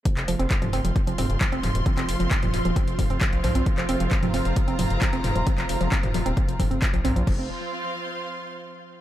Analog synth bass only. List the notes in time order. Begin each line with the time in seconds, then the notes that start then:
0.17 F1
0.28 F1
0.39 F1
0.62 F1
0.73 F1
0.84 F1
1.07 F1
1.18 F1
1.30 F1
1.52 F1
1.63 F1
1.75 D#1
1.97 F1
2.08 F1
2.20 F1
2.43 D#1
2.54 D#1
2.65 D#1
2.88 F1
2.99 F1
3.10 F1
3.33 A#1
3.44 A#1
3.55 A#1
3.78 F1
3.89 F1
4.00 F1
4.23 F1
4.34 F1
4.46 F1
4.68 F1
4.79 F1
4.91 F1
5.13 F1
5.24 F1
5.36 D#1
5.58 F1
5.69 F1
5.81 F1
6.03 D#1
6.14 D#1
6.26 D#1
6.48 F1
6.60 F1
6.71 F1
6.94 A#1
7.05 A#1
7.16 A#1
7.27 F1